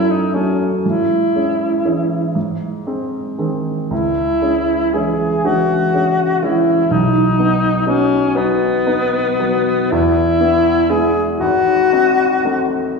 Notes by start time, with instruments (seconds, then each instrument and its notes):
Already playing: grand piano F#2 A3 C#4, alto saxophone E4
0.10 alto saxophone D#4
0.34 grand piano F#3 A3 C#4, alto saxophone C#4
0.83 grand piano G#2, alto saxophone E4
1.36 grand piano G#3 C#4
1.85 grand piano E3 G#3 C#4
2.35 grand piano G#2
2.87 grand piano G#3 C4
3.38 grand piano D#3 G#3 C4
3.90 grand piano C#2, alto saxophone E4
4.42 grand piano G#3 C#4
4.94 grand piano E3 G#3 C#4, alto saxophone G#4
5.44 grand piano E3 G#3 C#4, alto saxophone F#4
5.94 grand piano G#3 C#4
6.43 grand piano E3 G#3 C#4, alto saxophone E4
6.91 grand piano B1, alto saxophone D#4
7.39 grand piano B3 D#4
7.86 grand piano F#3 B3 D#4, alto saxophone C#4
8.35 grand piano F#3 B3 D#4, alto saxophone B3
8.87 grand piano B3 D#4
9.40 grand piano F#3 B3 D#4
9.91 grand piano E2, alto saxophone E4
10.41 grand piano B3 E4
10.90 grand piano G#3 B3 E4, alto saxophone G#4
11.39 grand piano G#1, alto saxophone F#4
11.93 grand piano C4 D#4
12.45 grand piano A3 C4 D#4